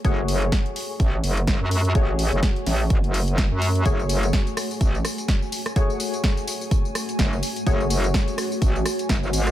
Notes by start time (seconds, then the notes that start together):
Already playing: A3 F#4 C#5 G#5
0.05 F#1 A3 F#4 G#4 C#5, kick, closed hi-hat
0.28 open hi-hat
0.42 closed hi-hat
0.52 kick, snare, closed hi-hat
0.66 closed hi-hat
0.76 open hi-hat
1.00 A1, kick, closed hi-hat
1.24 F#1, open hi-hat
1.37 closed hi-hat
1.47 kick, snare, closed hi-hat
1.61 F#2
1.71 open hi-hat
1.85 closed hi-hat
1.95 A1 A3 F#4 G#4 C#5, kick, closed hi-hat
2.19 open hi-hat
2.32 F#1, closed hi-hat
2.43 kick, snare, closed hi-hat
2.56 closed hi-hat
2.66 A1, snare, open hi-hat
2.90 G#1, kick, closed hi-hat
3.04 F#1, closed hi-hat
3.14 open hi-hat
3.28 closed hi-hat
3.38 kick, snare, closed hi-hat
3.52 F#2
3.62 open hi-hat
3.75 closed hi-hat
3.86 F#1 A3 F#4 G#4 C#5, kick, closed hi-hat, tambourine
3.99 tambourine
4.09 open hi-hat, tambourine
4.23 closed hi-hat, tambourine
4.33 kick, snare, closed hi-hat, tambourine
4.47 closed hi-hat, tambourine
4.57 cross-stick, open hi-hat, tambourine
4.71 tambourine
4.81 A1, kick, closed hi-hat, tambourine
4.95 tambourine
5.05 cross-stick, open hi-hat, tambourine
5.18 closed hi-hat, tambourine
5.28 kick, snare, closed hi-hat, tambourine
5.42 tambourine
5.52 open hi-hat, tambourine
5.66 cross-stick, closed hi-hat, tambourine
5.76 A3 F#4 G#4 C#5, kick, closed hi-hat, tambourine
5.90 tambourine
6.00 open hi-hat, tambourine
6.14 closed hi-hat, tambourine
6.24 kick, snare, closed hi-hat, tambourine
6.37 closed hi-hat, tambourine
6.47 open hi-hat, tambourine
6.61 tambourine
6.71 kick, closed hi-hat, tambourine
6.85 tambourine
6.95 cross-stick, open hi-hat, tambourine
7.09 closed hi-hat, tambourine
7.19 F#1, kick, snare, closed hi-hat, tambourine
7.33 tambourine
7.43 open hi-hat, tambourine
7.56 closed hi-hat, tambourine
7.67 F#1 A3 F#4 G#4 C#5, kick, closed hi-hat, tambourine
7.80 tambourine
7.90 open hi-hat, tambourine
8.04 closed hi-hat, tambourine
8.14 kick, snare, closed hi-hat, tambourine
8.28 closed hi-hat, tambourine
8.38 cross-stick, open hi-hat, tambourine
8.52 tambourine
8.62 A1, kick, closed hi-hat, tambourine
8.76 tambourine
8.86 cross-stick, open hi-hat, tambourine
8.99 closed hi-hat, tambourine
9.09 F#1, kick, snare, closed hi-hat, tambourine
9.23 tambourine
9.33 G#1, open hi-hat, tambourine
9.47 cross-stick, closed hi-hat, tambourine